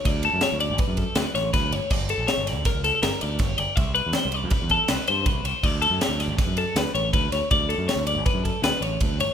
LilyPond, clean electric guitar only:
\new Staff \with { instrumentName = "Clean electric guitar" } { \time 5/4 \key d \major \tempo 4 = 161 d''8 a'8 cis''8 d''8 b'8 a'8 b'8 cis''8 b'8 cis''8 | d''8 a'8 cis''8 d''8 bes'8 a'8 bes'8 d''8 cis''8 d''8 | e''8 b'8 c''8 d''8 b'8 a'8 b'8 c''8 b'8 c''8 | d''8 a'8 cis''8 d''8 b'8 a'8 b'8 cis''8 b'8 cis''8 |
d''8 a'8 cis''8 d''8 b'8 a'8 b'8 cis''8 b'8 cis''8 | }